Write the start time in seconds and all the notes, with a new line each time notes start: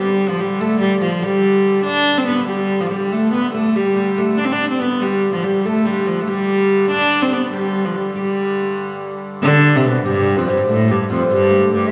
Already playing: G2 D3 G3 G4
0.28 F3 F4
0.39 G3 G4
0.60 A3 A4
0.80 G3 G4
1.01 F3 F4
1.22 G3 G4
1.86 D4 D5
2.18 C4
2.27 B3 B4
2.49 G3 G4
2.80 F3 F4
2.91 G3 G4
3.12 A3 A4
3.33 B3 B4
3.54 A3 A4
3.75 G3 G4
3.96 G4
4.18 A3 A4
4.37 G2 D3 D4 D5
4.45 C4
4.52 D4 D5
4.69 C4
4.79 B3 B4
5.01 G3 G4
5.33 F3 F4
5.43 G3 G4
5.65 A3 A4
5.85 G3 G4
6.06 F3
6.21 A3
6.28 G3 G4
6.91 D4 D5
7.22 C4 C5
7.32 B3 B4
7.52 G3 G4
7.85 F3
7.95 G3
8.16 G3 G4
9.43 G2 D3 D4 D5
9.73 C3 C4
9.85 B2 B3 B4
10.05 G2 G3 G4
10.13 G3
10.22 G3
10.37 F2 F3 F4
10.47 G2 G3 G4
10.53 G3
10.57 G3
10.69 A2 A3 A4
10.88 G2 G3 G4
11.10 F2 F3 F4
11.25 A4
11.31 G2 G3 G4
11.51 A3
11.73 G2 G4
11.87 E5